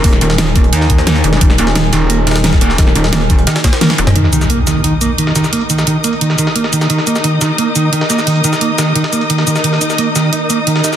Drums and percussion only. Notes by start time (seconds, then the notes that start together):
0.04 kick, closed hi-hat, open hi-hat
0.13 snare, closed hi-hat
0.21 snare, closed hi-hat
0.30 snare
0.38 snare, closed hi-hat
0.56 kick, closed hi-hat
0.64 closed hi-hat
0.73 closed hi-hat
0.81 snare
0.90 kick, closed hi-hat
0.98 snare
1.07 snare, closed hi-hat
1.16 snare
1.24 closed hi-hat
1.33 snare
1.41 kick, closed hi-hat
1.50 snare
1.58 snare, closed hi-hat
1.67 snare
1.75 snare, closed hi-hat
1.93 snare, closed hi-hat
2.10 closed hi-hat
2.27 snare, closed hi-hat
2.31 snare, closed hi-hat
2.36 snare, closed hi-hat
2.44 snare, closed hi-hat
2.53 kick, snare
2.61 snare, closed hi-hat
2.70 snare
2.78 kick, snare, closed hi-hat
2.87 snare
2.96 snare, closed hi-hat
3.04 snare
3.13 snare, closed hi-hat
3.30 kick, closed hi-hat
3.39 closed hi-hat
3.47 snare, closed hi-hat
3.56 snare, closed hi-hat
3.64 kick, snare, closed hi-hat
3.73 snare, closed hi-hat
3.81 snare, closed hi-hat, high tom
3.90 snare, closed hi-hat
3.98 closed hi-hat
4.07 snare, closed hi-hat, mid tom
4.16 closed hi-hat
4.24 snare
4.33 closed hi-hat, shaker
4.41 snare, shaker
4.50 closed hi-hat
4.67 snare, closed hi-hat, shaker
4.84 closed hi-hat
5.01 closed hi-hat, shaker
5.18 closed hi-hat
5.27 snare
5.36 snare, closed hi-hat, shaker
5.44 snare, shaker
5.53 closed hi-hat, open hi-hat
5.61 closed hi-hat
5.70 closed hi-hat, shaker
5.78 snare, shaker
5.87 closed hi-hat
6.04 closed hi-hat, shaker
6.13 closed hi-hat
6.21 closed hi-hat
6.30 snare
6.38 closed hi-hat, shaker
6.47 snare
6.56 closed hi-hat
6.64 snare
6.73 closed hi-hat, shaker
6.81 snare, shaker
6.90 closed hi-hat
6.98 snare
7.07 closed hi-hat, shaker
7.16 snare, shaker
7.24 closed hi-hat
7.41 snare, closed hi-hat, shaker
7.58 closed hi-hat
7.76 closed hi-hat, shaker
7.93 closed hi-hat
8.01 snare
8.10 snare, closed hi-hat, shaker
8.18 snare, shaker
8.27 closed hi-hat, open hi-hat
8.36 closed hi-hat
8.44 closed hi-hat, shaker
8.53 snare, shaker
8.61 closed hi-hat
8.78 snare, closed hi-hat, shaker
8.96 closed hi-hat
9.04 snare, closed hi-hat
9.13 closed hi-hat, shaker
9.21 closed hi-hat
9.30 closed hi-hat
9.38 snare
9.47 closed hi-hat, shaker
9.56 snare, shaker
9.64 closed hi-hat
9.73 snare
9.81 closed hi-hat, shaker
9.90 snare, shaker
9.98 closed hi-hat
10.16 snare, closed hi-hat, shaker
10.33 closed hi-hat
10.50 closed hi-hat, shaker
10.67 closed hi-hat
10.76 snare
10.84 snare, closed hi-hat, shaker
10.93 snare, shaker